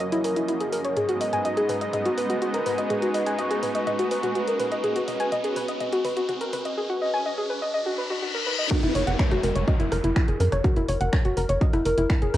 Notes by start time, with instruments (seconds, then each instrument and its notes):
Already playing: analog synth pad F#2 F#3 A#3 C#4 D#5, ambient pad C#4 F#4 A#4, riser
0.12 synth arpeggio sound E4, closed hi-hat
0.24 synth arpeggio sound A#4, open hi-hat
0.36 synth arpeggio sound E4, closed hi-hat
0.48 synth arpeggio sound E4, closed hi-hat
0.60 synth arpeggio sound G#4, closed hi-hat
0.72 synth arpeggio sound A#4, open hi-hat
0.85 synth arpeggio sound C#5, closed hi-hat
0.96 analog synth pad G#2 G#3 B3 D#4 D#5, ambient pad G#3, synth arpeggio sound G#4, closed hi-hat, mid tom
1.09 synth arpeggio sound F#4, closed hi-hat
1.21 ambient pad B4, synth arpeggio sound D#5, open hi-hat
1.29 ambient pad C#4, synth arpeggio sound G#5, closed hi-hat, mid tom
1.45 synth arpeggio sound D#5, closed hi-hat
1.57 ambient pad F#4, synth arpeggio sound G#4, closed hi-hat
1.69 synth arpeggio sound B4, open hi-hat, mid tom
1.81 synth arpeggio sound D#5, closed hi-hat
1.93 synth arpeggio sound D#5, closed hi-hat, mid tom
2.06 synth arpeggio sound F#4, closed hi-hat
2.18 synth arpeggio sound B4, open hi-hat
2.30 synth arpeggio sound F#4, closed hi-hat
2.42 synth arpeggio sound F#4, closed hi-hat
2.54 synth arpeggio sound A#4, closed hi-hat
2.66 synth arpeggio sound B4, open hi-hat, mid tom
2.78 synth arpeggio sound D#5, closed hi-hat
2.90 synth arpeggio sound G#4, closed hi-hat, mid tom
3.02 synth arpeggio sound F#4, closed hi-hat
3.14 synth arpeggio sound D#5, open hi-hat
3.26 synth arpeggio sound G#5, closed hi-hat
3.39 synth arpeggio sound D#5, closed hi-hat
3.51 synth arpeggio sound G#4, closed hi-hat
3.63 synth arpeggio sound B4, open hi-hat, mid tom
3.75 synth arpeggio sound D#5, closed hi-hat
3.87 synth arpeggio sound D#5, closed hi-hat, mid tom
3.99 synth arpeggio sound F#4, closed hi-hat
4.11 synth arpeggio sound B4, open hi-hat
4.23 synth arpeggio sound F#4, closed hi-hat, mid tom
4.35 synth arpeggio sound F#4, closed hi-hat
4.47 synth arpeggio sound A#4, closed hi-hat
4.60 synth arpeggio sound B4, open hi-hat, mid tom
4.72 synth arpeggio sound D#5, closed hi-hat
4.84 synth arpeggio sound G#4, closed hi-hat, mid tom
4.96 synth arpeggio sound F#4, closed hi-hat
5.08 synth arpeggio sound D#5, open hi-hat, mid tom
5.20 synth arpeggio sound G#5, closed hi-hat
5.32 synth arpeggio sound D#5, closed hi-hat, mid tom
5.44 synth arpeggio sound G#4, closed hi-hat
5.56 synth arpeggio sound B4, open hi-hat, mid tom
5.68 synth arpeggio sound D#5, closed hi-hat
5.80 synth arpeggio sound D#5, closed hi-hat, mid tom
5.93 synth arpeggio sound F#4, closed hi-hat
6.05 synth arpeggio sound B4, open hi-hat, mid tom
6.17 synth arpeggio sound F#4, closed hi-hat
6.29 synth arpeggio sound F#4, closed hi-hat, mid tom
6.41 synth arpeggio sound A#4, closed hi-hat
6.53 synth arpeggio sound B4, open hi-hat, mid tom
6.65 synth arpeggio sound D#5, closed hi-hat
6.77 synth arpeggio sound G#4
6.89 synth arpeggio sound F#4
7.02 synth arpeggio sound D#5
7.14 synth arpeggio sound G#5
7.26 synth arpeggio sound D#5
7.38 synth arpeggio sound G#4
7.50 synth arpeggio sound B4
7.62 synth arpeggio sound D#5
7.74 synth arpeggio sound D#5, reverse cymbal
7.86 synth arpeggio sound F#4
7.98 synth arpeggio sound B4
8.10 synth arpeggio sound F#4
8.22 synth arpeggio sound F#4
8.35 synth arpeggio sound A#4
8.47 synth arpeggio sound B4
8.59 synth arpeggio sound D#5
8.71 synth arpeggio sound F#4, kick, cross-stick, closed hi-hat, crash, downlifter
8.83 analog synth bass F#1, synth arpeggio sound E4, closed hi-hat
8.95 analog synth bass F#1, synth arpeggio sound C#5, open hi-hat
9.07 analog synth bass F#1, synth arpeggio sound F#5, closed hi-hat
9.19 synth arpeggio sound C#5, finger snap, kick, closed hi-hat
9.31 analog synth bass F#1, synth arpeggio sound F#4, cross-stick, closed hi-hat
9.43 analog synth bass F#1, synth arpeggio sound A#4, open hi-hat
9.56 analog synth bass F#1, synth arpeggio sound C#5, closed hi-hat
9.67 ambient pad A#4, synth arpeggio sound D#5, kick, closed hi-hat
9.80 analog synth bass F#1, synth arpeggio sound E4, closed hi-hat
9.92 analog synth bass F#1, synth arpeggio sound A#4, cross-stick, open hi-hat
10.04 analog synth bass F#1, synth arpeggio sound E4, closed hi-hat
10.16 synth arpeggio sound E4, finger snap, kick, closed hi-hat
10.28 analog synth bass F#1, synth arpeggio sound G#4, closed hi-hat
10.40 analog synth bass F#2, synth arpeggio sound A#4, open hi-hat
10.52 analog synth bass F#1, synth arpeggio sound C#5, cross-stick, closed hi-hat
10.64 synth arpeggio sound F#4, kick, closed hi-hat
10.77 analog synth bass F#1, synth arpeggio sound E4, closed hi-hat
10.89 analog synth bass F#1, synth arpeggio sound C#5, open hi-hat
11.01 analog synth bass F#1, synth arpeggio sound F#5, closed hi-hat
11.13 synth arpeggio sound C#5, finger snap, kick, cross-stick, closed hi-hat
11.25 analog synth bass F#1, synth arpeggio sound F#4, closed hi-hat
11.37 analog synth bass F#1, synth arpeggio sound A#4, open hi-hat
11.49 analog synth bass F#1, synth arpeggio sound C#5, closed hi-hat
11.61 synth arpeggio sound D#5, kick, closed hi-hat
11.73 analog synth bass F#1, synth arpeggio sound E4, cross-stick, closed hi-hat
11.85 analog synth bass F#1, synth arpeggio sound A#4, open hi-hat
11.97 analog synth bass F#1, synth arpeggio sound E4, closed hi-hat
12.10 synth arpeggio sound E4, finger snap, kick, closed hi-hat
12.22 analog synth bass F#1, synth arpeggio sound G#4, closed hi-hat
12.34 analog synth bass F#2, synth arpeggio sound A#4, cross-stick, open hi-hat